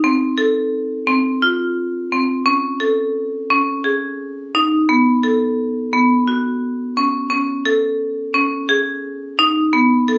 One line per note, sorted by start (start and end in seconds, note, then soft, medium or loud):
0.04 0.29 C4 medium
0.38 0.87 A4 medium
1.07 1.32 C4 medium
1.42 1.92 F4 medium
2.12 2.37 C4 medium
2.46 2.71 C#4 medium
2.80 3.30 A4 medium
3.50 3.75 C#4 medium
3.84 4.34 G#4 medium
4.55 4.79 D#4 medium
4.89 5.14 B3 medium
5.23 5.73 A4 medium
5.93 6.18 B3 medium
6.28 6.77 F#4 medium
6.97 7.21 C#4 medium
7.30 7.55 C#4 medium
7.65 8.15 A4 medium
8.34 8.59 C#4 medium
8.69 9.18 G#4 medium
9.39 9.63 D#4 medium
9.73 9.98 B3 medium
10.08 10.18 A4 medium